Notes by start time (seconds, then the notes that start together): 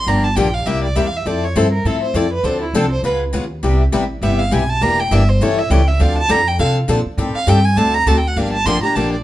0.07 G1 D3 F3 A#3 D4 G4 A#5
0.24 A5
0.36 A#1 D3 F3 A#3 D4 G4 G5
0.54 F5
0.66 C2 C3 G3 A#3 E4 G4 E5
0.84 D5
0.96 E2 C3 G3 A#3 E4 G4 E5
1.07 F5
1.17 E5
1.26 F2 F3 C4 E4 A4 D5
1.44 C#5
1.56 G2 F3 C4 E4 A4 C5
1.73 A#4
1.85 A2 F3 C4 E4 A4
2.03 C5
2.14 F2 F3 C4 E4 A4 D5
2.33 B4
2.43 D2 D3 F3 C4 D4 A4 C5
2.62 E4
2.74 C2 D3 F3 C4 D4 A4
2.92 C5
3.03 C#2 C#3 G#3 B3 F4 G#4 B4
3.33 D#2 C#3 G#3 B3 F4 G#4
3.63 C2 C3 G3 B3 E4 G4
3.92 A1 C3 G3 B3 E4 G4
4.22 G1 C3 G3 B3 E4 G4 E5
4.40 F5
4.51 B1 C3 G3 B3 E4 G4 G#5
4.70 A5
4.81 E1 E3 A#3 D4 G4 A#5
5.00 G5
5.11 G1 E3 A#3 D4 G4 E5
5.29 C5
5.40 A1 E3 G3 C#4 E4 A4 C#5
5.59 E5
5.70 C#2 E3 G3 C#4 E4 A4 G5
5.88 E5
5.99 D2 D3 F3 C4 D4 A4 F5
6.18 A5
6.29 F2 D3 F3 C4 D4 A4 A#5
6.48 G5
6.59 C3 D3 F3 C4 D4 A4 F5
6.88 A#2 D3 F3 C4 D4 A4
7.06 muted upright bass stroke
7.18 A2 D#3 G3 C4 G4 A4
7.35 F5, muted upright bass stroke
7.47 G2 D#3 G3 C4 G4 A4 G5
7.65 G#5
7.76 D2 D3 A3 C4 F#4 A4 A5
7.94 A#5
8.06 D2 D3 A3 C4 F#4 A4 A5
8.17 G5
8.28 F#5
8.36 G1 D3 F3 A#3 D4 G4 F5
8.53 A5
8.66 A1 D3 F3 A#3 D4 G4 C6
8.83 A#3 D4 G4 A#5, muted upright bass stroke
8.96 A#1 D3 F3 A#3 D4 G4 A5
9.13 D5